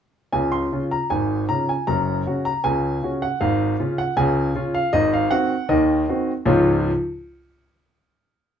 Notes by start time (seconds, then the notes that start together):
0.33 C#2 C#3 G#5
0.52 C6
0.73 C#3 C#4 F4
0.91 A#5
1.10 G#1 G#2 G#5
1.49 C#3 C#4 F4 A#5
1.69 G#5
1.87 F#1 F#2 A#5
2.26 C#3 C#4 F#4
2.45 A#5
2.64 C#2 C#3 G#5
3.03 C#3 C#4 F#4
3.22 F#5
3.41 G#1 G#2 F5
3.80 C#3 C#4 F4
3.98 F#5
4.17 C#2 C#3 G#5
4.55 C#3 C#4 F4
4.74 F5
4.93 G#1 G#2 D#5
5.14 F5
5.31 D#3 C4 F#4 F#5
5.69 D#2 D#3 D#5
6.08 D#3 C4 F#4
6.46 C#2 G#2 F3 G#3 C#4 F4 C#5